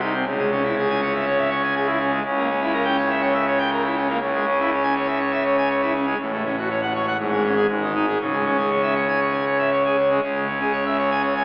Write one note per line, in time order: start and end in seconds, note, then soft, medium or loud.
0.00 0.24 C2 medium
0.00 0.24 C3 medium
0.00 0.13 D#4 medium
0.13 0.25 C4 medium
0.25 2.20 C#2 medium
0.25 2.20 C#3 medium
0.38 0.50 G#3 medium
0.52 0.63 C#4 medium
0.63 0.75 E4 medium
0.77 0.88 G#4 medium
0.89 1.00 G#5 medium
1.02 1.13 C#5 medium
1.14 1.25 E5 medium
1.27 1.38 C#5 medium
1.38 1.49 E5 medium
1.50 1.62 C#5 medium
1.63 1.74 G#5 medium
1.76 1.87 G#4 medium
1.87 1.98 E4 medium
2.00 2.11 C#4 medium
2.12 2.23 G#3 medium
2.25 4.18 C#2 medium
2.25 4.18 C#3 medium
2.37 2.48 A#3 medium
2.49 2.60 C#4 medium
2.62 2.73 E4 medium
2.74 2.85 A#4 medium
2.85 2.96 G5 medium
2.98 3.09 C#5 medium
3.10 3.21 E5 medium
3.22 3.33 C#5 medium
3.34 3.46 E5 medium
3.47 3.58 C#5 medium
3.58 3.70 G5 medium
3.72 3.83 A#4 medium
3.84 3.95 E4 medium
3.97 4.08 C#4 medium
4.08 4.19 A#3 medium
4.20 6.14 C#2 medium
4.20 6.14 C#3 medium
4.34 4.45 G#3 medium
4.47 4.58 C#4 medium
4.60 4.70 E4 medium
4.73 4.83 C#5 medium
4.83 4.94 G#5 medium
4.96 5.07 C#5 medium
5.08 5.19 E5 medium
5.20 5.31 C#5 medium
5.33 5.44 E5 medium
5.45 5.56 C#5 medium
5.58 5.69 G#5 medium
5.71 5.81 C#5 medium
5.82 5.93 E4 medium
5.95 6.06 C#4 medium
6.07 6.17 G#3 medium
6.20 7.16 A1 medium
6.20 7.16 A2 medium
6.32 6.43 A3 medium
6.45 6.56 C#4 medium
6.58 6.68 F#4 medium
6.70 6.81 C#5 medium
6.83 6.93 F#5 medium
6.95 7.06 C#5 medium
7.07 7.17 F#5 medium
7.19 7.66 G#1 medium
7.19 7.66 G#2 medium
7.32 7.43 G#3 medium
7.44 7.55 C#4 medium
7.55 7.66 G#4 medium
7.68 8.17 G#1 medium
7.68 8.18 G#2 medium
7.82 7.93 D#3 medium
7.95 8.06 D#4 medium
8.08 8.18 G#4 medium
8.20 10.20 C#2 medium
8.20 10.20 C#3 medium
8.33 8.44 G#3 medium
8.46 8.57 C#4 medium
8.59 8.70 G#4 soft
8.70 8.82 C#5 medium
8.83 8.94 E5 medium
8.96 9.07 C#5 medium
9.08 9.20 G#5 medium
9.21 9.33 C#5 medium
9.33 9.45 G#5 medium
9.46 9.58 C#5 medium
9.59 9.70 E5 medium
9.72 9.83 C#5 medium
9.85 9.96 G#4 medium
9.98 10.09 C#4 medium
10.09 10.21 G#3 soft
10.22 11.44 C#2 medium
10.22 11.44 C#3 medium
10.35 10.47 G#3 medium
10.47 10.59 C#4 medium
10.61 10.72 G#4 medium
10.72 10.84 C#5 medium
10.86 10.97 E5 medium
10.98 11.09 C#5 medium
11.11 11.22 G#5 medium
11.22 11.34 C#5 medium
11.36 11.44 G#5 medium